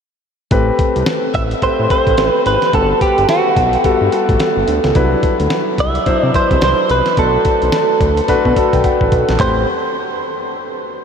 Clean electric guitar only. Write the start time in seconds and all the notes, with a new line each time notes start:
1.35 E5
1.63 C5
1.91 C5
2.28 B4
2.47 B4
2.74 A4
3.02 G4
3.30 F#4
5.80 E5
6.24 D5
6.36 C5
6.64 C5
6.91 B4
7.19 A4
9.41 C5